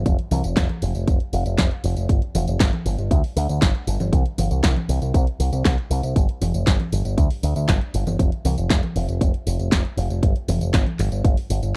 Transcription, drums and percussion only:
0.06 kick loud
0.06 closed hi-hat medium
0.06 tambourine soft
0.19 closed hi-hat soft
0.31 open hi-hat loud
0.31 tambourine medium
0.31 high conga medium
0.44 closed hi-hat soft
0.44 tambourine soft
0.57 kick loud
0.57 snare loud
0.57 clap medium
0.57 closed hi-hat medium
0.57 tambourine soft
0.69 closed hi-hat soft
0.69 high conga medium
0.82 open hi-hat loud
0.82 tambourine medium
0.95 closed hi-hat soft
0.95 tambourine soft
1.08 kick loud
1.08 closed hi-hat medium
1.08 tambourine soft
1.20 closed hi-hat soft
1.33 open hi-hat loud
1.33 tambourine medium
1.46 closed hi-hat soft
1.46 tambourine soft
1.58 kick loud
1.58 snare loud
1.58 clap loud
1.58 closed hi-hat loud
1.58 tambourine soft
1.71 closed hi-hat soft
1.84 open hi-hat loud
1.84 tambourine medium
1.97 closed hi-hat soft
1.97 tambourine soft
2.09 kick loud
2.09 closed hi-hat medium
2.09 tambourine soft
2.22 closed hi-hat soft
2.35 open hi-hat loud
2.35 tambourine medium
2.35 high conga medium
2.48 closed hi-hat soft
2.48 tambourine soft
2.60 kick loud
2.60 snare loud
2.60 clap medium
2.60 closed hi-hat medium
2.60 tambourine soft
2.73 closed hi-hat soft
2.73 high conga medium
2.86 open hi-hat loud
2.86 tambourine medium
2.98 closed hi-hat soft
2.98 tambourine soft
3.11 kick loud
3.11 closed hi-hat medium
3.11 tambourine soft
3.24 open hi-hat medium
3.37 open hi-hat loud
3.37 tambourine medium
3.49 closed hi-hat soft
3.49 tambourine soft
3.62 kick loud
3.62 snare loud
3.62 clap medium
3.62 closed hi-hat medium
3.62 tambourine soft
3.75 closed hi-hat soft
3.87 open hi-hat loud
3.87 tambourine medium
4.00 closed hi-hat soft
4.00 tambourine soft
4.00 high conga medium
4.13 kick loud
4.13 closed hi-hat medium
4.13 tambourine soft
4.26 closed hi-hat soft
4.38 open hi-hat loud
4.38 tambourine medium
4.38 high conga medium
4.51 closed hi-hat soft
4.51 tambourine soft
4.63 kick loud
4.63 snare loud
4.63 clap medium
4.63 closed hi-hat medium
4.63 tambourine soft
4.76 closed hi-hat soft
4.76 high conga medium
4.89 open hi-hat loud
4.89 tambourine medium
5.02 closed hi-hat soft
5.02 tambourine soft
5.14 kick loud
5.14 closed hi-hat medium
5.14 tambourine soft
5.27 closed hi-hat soft
5.40 open hi-hat loud
5.40 tambourine medium
5.53 closed hi-hat soft
5.53 tambourine soft
5.65 kick loud
5.65 snare loud
5.65 clap medium
5.65 closed hi-hat medium
5.65 tambourine soft
5.78 closed hi-hat soft
5.91 open hi-hat loud
5.91 tambourine medium
6.03 closed hi-hat soft
6.03 tambourine soft
6.16 kick loud
6.16 closed hi-hat medium
6.16 tambourine soft
6.29 closed hi-hat soft
6.42 open hi-hat loud
6.42 tambourine medium
6.42 high conga medium
6.54 closed hi-hat soft
6.54 tambourine soft
6.67 kick loud
6.67 snare loud
6.67 clap medium
6.67 closed hi-hat medium
6.67 tambourine soft
6.80 closed hi-hat soft
6.80 high conga medium
6.92 open hi-hat loud
6.92 tambourine medium
7.05 closed hi-hat soft
7.05 tambourine soft
7.18 kick loud
7.18 closed hi-hat medium
7.18 tambourine soft
7.31 open hi-hat medium
7.43 open hi-hat loud
7.43 tambourine medium
7.56 closed hi-hat soft
7.56 tambourine soft
7.68 kick loud
7.68 snare loud
7.68 clap medium
7.68 closed hi-hat medium
7.68 tambourine soft
7.81 closed hi-hat soft
7.94 open hi-hat loud
7.94 tambourine medium
8.07 closed hi-hat soft
8.07 tambourine soft
8.07 high conga medium
8.19 kick loud
8.19 closed hi-hat loud
8.19 tambourine soft
8.32 closed hi-hat soft
8.45 open hi-hat loud
8.45 tambourine medium
8.45 high conga medium
8.58 closed hi-hat soft
8.58 tambourine soft
8.70 kick loud
8.70 snare loud
8.70 clap medium
8.70 closed hi-hat loud
8.70 tambourine soft
8.83 closed hi-hat soft
8.83 high conga medium
8.96 open hi-hat loud
8.96 tambourine medium
9.09 closed hi-hat soft
9.09 tambourine soft
9.21 kick loud
9.21 closed hi-hat loud
9.21 tambourine soft
9.34 closed hi-hat soft
9.47 open hi-hat loud
9.47 tambourine medium
9.59 closed hi-hat soft
9.59 tambourine soft
9.72 kick loud
9.72 snare loud
9.72 clap medium
9.72 closed hi-hat loud
9.72 tambourine soft
9.85 closed hi-hat soft
9.98 open hi-hat loud
9.98 tambourine medium
10.10 closed hi-hat soft
10.10 tambourine soft
10.23 kick loud
10.23 closed hi-hat loud
10.23 tambourine soft
10.36 closed hi-hat soft
10.48 open hi-hat loud
10.48 tambourine medium
10.48 high conga medium
10.61 closed hi-hat soft
10.61 tambourine soft
10.74 kick loud
10.74 snare loud
10.74 clap medium
10.74 closed hi-hat loud
10.74 tambourine soft
10.86 closed hi-hat soft
10.86 high conga medium
10.99 clap medium
10.99 open hi-hat loud
10.99 tambourine medium
11.12 closed hi-hat soft
11.12 tambourine soft
11.24 kick loud
11.24 closed hi-hat medium
11.24 tambourine soft
11.37 open hi-hat medium
11.50 open hi-hat loud
11.50 tambourine medium
11.63 closed hi-hat soft
11.63 tambourine soft

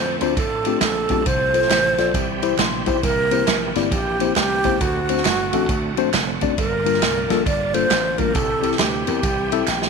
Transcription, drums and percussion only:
0.21 ride bell medium
0.21 tambourine medium
0.37 kick loud
0.37 ride bell medium
0.37 tambourine medium
0.65 ride bell medium
0.65 tambourine medium
0.81 snare loud
0.81 clap loud
0.81 ride bell medium
0.81 tambourine medium
1.09 kick medium
1.09 ride bell medium
1.09 tambourine medium
1.26 kick loud
1.26 ride bell medium
1.26 tambourine medium
1.54 ride bell medium
1.54 tambourine medium
1.62 snare soft
1.70 snare loud
1.70 clap medium
1.70 ride bell medium
1.70 tambourine loud
1.98 snare soft
1.98 ride bell medium
1.98 tambourine medium
2.14 kick loud
2.14 ride bell medium
2.14 tambourine medium
2.42 ride bell medium
2.42 tambourine medium
2.59 snare loud
2.59 clap medium
2.59 ride bell medium
2.59 tambourine loud
2.86 kick medium
2.86 ride bell medium
2.86 tambourine medium
3.03 kick loud
3.03 ride bell medium
3.03 tambourine medium
3.31 ride bell medium
3.31 tambourine medium
3.47 snare loud
3.47 clap medium
3.47 ride bell medium
3.47 tambourine loud
3.75 snare soft
3.75 ride bell medium
3.75 tambourine medium
3.92 kick loud
3.92 ride bell medium
3.92 tambourine medium
4.20 ride bell medium
4.20 tambourine medium
4.36 snare loud
4.36 clap medium
4.36 ride bell medium
4.36 tambourine loud
4.64 kick medium
4.64 ride bell medium
4.64 tambourine medium
4.81 kick loud
4.81 ride bell medium
4.81 tambourine medium
5.09 ride bell medium
5.09 tambourine medium
5.17 snare soft
5.25 snare loud
5.25 clap loud
5.25 ride bell medium
5.25 tambourine medium
5.53 ride bell medium
5.53 tambourine medium
5.69 kick loud
5.69 ride bell medium
5.69 tambourine medium
5.97 ride bell medium
5.97 tambourine soft
6.14 snare loud
6.14 clap loud
6.14 ride bell medium
6.14 tambourine medium
6.41 kick medium
6.41 ride bell medium
6.41 tambourine medium
6.58 kick loud
6.58 ride bell medium
6.58 tambourine medium
6.86 ride bell medium
6.86 tambourine medium
6.94 snare soft
7.02 snare loud
7.02 clap loud
7.02 ride bell medium
7.02 tambourine medium
7.30 snare soft
7.30 ride bell medium
7.30 tambourine medium
7.46 kick loud
7.46 ride bell medium
7.46 tambourine medium
7.74 ride bell medium
7.74 tambourine soft
7.91 snare loud
7.91 clap loud
7.91 ride bell medium
7.91 tambourine loud
8.18 kick medium
8.18 ride bell soft
8.18 tambourine medium
8.35 kick loud
8.35 ride bell medium
8.35 tambourine medium
8.63 ride bell medium
8.63 tambourine medium
8.71 snare soft
8.79 snare loud
8.79 clap loud
8.79 ride bell medium
8.79 tambourine loud
9.07 ride bell medium
9.07 tambourine medium
9.23 kick loud
9.23 ride bell medium
9.23 tambourine medium
9.52 ride bell medium
9.52 tambourine soft
9.67 snare medium
9.67 clap loud
9.67 tambourine loud
9.82 snare medium

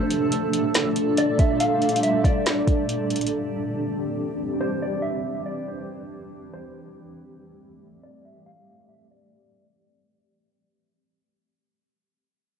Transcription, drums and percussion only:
0.10 closed hi-hat medium
0.32 closed hi-hat medium
0.53 closed hi-hat medium
0.75 snare loud
0.75 closed hi-hat medium
0.96 closed hi-hat medium
1.17 closed hi-hat medium
1.39 kick medium
1.39 closed hi-hat medium
1.60 closed hi-hat medium
1.82 closed hi-hat soft
1.89 closed hi-hat medium
1.96 closed hi-hat medium
2.03 closed hi-hat medium
2.24 kick medium
2.24 closed hi-hat medium
2.46 snare loud
2.46 closed hi-hat medium
2.67 kick medium
2.67 closed hi-hat medium
2.89 closed hi-hat medium
3.10 closed hi-hat medium
3.16 closed hi-hat medium
3.21 closed hi-hat medium
3.27 closed hi-hat medium

